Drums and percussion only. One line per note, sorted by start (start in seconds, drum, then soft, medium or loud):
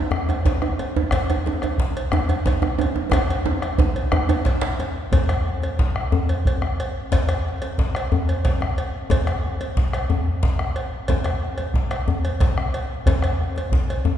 0.11 bombo rim medium
0.11 djembe slap soft
0.11 djembe tone medium
0.11 djembe bass medium
0.29 cowbell soft
0.29 djembe slap soft
0.29 djembe tone medium
0.45 bombo low medium
0.45 cowbell soft
0.45 djembe slap medium
0.45 djembe tone medium
0.62 bombo rim medium
0.62 djembe slap soft
0.62 djembe tone medium
0.79 cowbell soft
0.79 djembe tone medium
0.96 djembe tone medium
1.11 bombo rim medium
1.11 bombo low medium
1.11 cowbell medium
1.11 djembe slap medium
1.11 djembe bass medium
1.30 cowbell medium
1.30 djembe tone medium
1.46 djembe tone medium
1.62 bombo rim medium
1.62 cowbell soft
1.62 djembe tone medium
1.78 bombo low medium
1.78 djembe slap medium
1.97 cowbell medium
2.12 bombo rim medium
2.12 djembe slap soft
2.12 djembe tone medium
2.12 djembe bass medium
2.29 cowbell soft
2.29 djembe tone medium
2.46 bombo low loud
2.46 cowbell medium
2.46 djembe slap medium
2.46 djembe tone medium
2.62 bombo rim medium
2.62 djembe slap soft
2.62 djembe tone medium
2.79 cowbell medium
2.79 djembe tone medium
2.96 djembe tone medium
3.11 bombo rim loud
3.11 bombo low medium
3.11 cowbell medium
3.11 djembe slap medium
3.11 djembe tone medium
3.11 djembe bass medium
3.30 cowbell medium
3.46 djembe tone loud
3.46 djembe tone medium
3.62 bombo rim medium
3.62 cowbell soft
3.78 bombo low loud
3.78 djembe slap medium
3.78 djembe tone medium
3.96 cowbell soft
3.96 djembe slap soft
4.12 bombo rim loud
4.12 djembe tone medium
4.12 djembe bass medium
4.29 cowbell medium
4.29 djembe tone medium
4.45 bombo rim soft
4.45 bombo low loud
4.45 cowbell medium
4.45 djembe slap medium
4.61 bombo rim medium
4.61 djembe slap medium
4.79 bombo rim soft
4.79 cowbell soft
4.79 djembe tone medium
4.96 djembe slap soft
5.12 bombo low loud
5.12 cowbell medium
5.12 djembe slap medium
5.12 djembe tone medium
5.12 djembe bass medium
5.29 bombo rim medium
5.29 cowbell medium
5.62 cowbell soft
5.62 djembe tone medium
5.79 bombo low loud
5.79 djembe slap medium
5.96 bombo rim medium
6.12 djembe tone medium
6.12 djembe bass medium
6.29 bombo rim soft
6.29 cowbell medium
6.45 bombo low loud
6.45 cowbell medium
6.62 bombo rim medium
6.62 djembe slap soft
6.62 djembe tone medium
6.80 cowbell medium
7.12 bombo low medium
7.12 cowbell medium
7.12 djembe slap medium
7.12 djembe tone medium
7.12 djembe bass medium
7.29 bombo rim medium
7.29 cowbell medium
7.62 cowbell medium
7.62 djembe tone medium
7.78 bombo low medium
7.78 djembe slap medium
7.95 bombo rim medium
7.95 cowbell medium
8.12 djembe tone medium
8.12 djembe bass medium
8.29 bombo rim soft
8.29 cowbell medium
8.45 bombo low loud
8.45 cowbell medium
8.45 djembe slap medium
8.61 bombo rim medium
8.61 djembe slap soft
8.61 djembe tone medium
8.78 cowbell medium
9.10 bombo low loud
9.10 cowbell medium
9.10 djembe slap medium
9.10 djembe tone medium
9.10 djembe bass medium
9.27 bombo rim medium
9.27 cowbell medium
9.60 cowbell medium
9.60 djembe tone medium
9.77 bombo low loud
9.77 djembe slap medium
9.93 bombo rim medium
9.93 cowbell soft
10.10 djembe tone medium
10.10 djembe bass medium
10.26 bombo rim soft
10.43 bombo low loud
10.43 djembe slap medium
10.59 bombo rim medium
10.59 djembe slap soft
10.59 djembe tone medium
10.76 cowbell medium
11.08 bombo low loud
11.08 cowbell medium
11.08 djembe slap medium
11.08 djembe tone medium
11.08 djembe bass medium
11.24 bombo rim medium
11.24 cowbell medium
11.58 cowbell medium
11.58 djembe tone medium
11.74 bombo rim soft
11.74 bombo low loud
11.74 djembe slap medium
11.91 bombo rim medium
11.91 cowbell medium
12.08 bombo rim soft
12.08 djembe tone medium
12.08 djembe bass medium
12.25 cowbell medium
12.25 djembe slap soft
12.40 bombo low loud
12.40 cowbell medium
12.40 djembe slap medium
12.58 bombo rim medium
12.58 djembe slap soft
12.58 djembe tone medium
12.74 cowbell medium
13.06 bombo low loud
13.06 cowbell medium
13.06 djembe slap medium
13.06 djembe tone medium
13.06 djembe bass medium
13.22 bombo rim medium
13.22 cowbell medium
13.56 cowbell medium
13.56 djembe tone medium
13.72 bombo low loud
13.72 djembe slap medium
13.90 cowbell medium
14.05 djembe tone medium
14.05 djembe bass medium